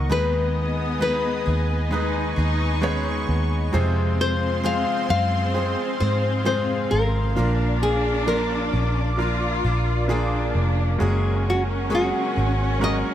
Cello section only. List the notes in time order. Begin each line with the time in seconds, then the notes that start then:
0.10 B3
1.92 D#4
2.38 D#4
2.82 C#4
3.28 B3
3.73 C4
7.37 D4
9.19 F4
10.09 D4
11.01 C#4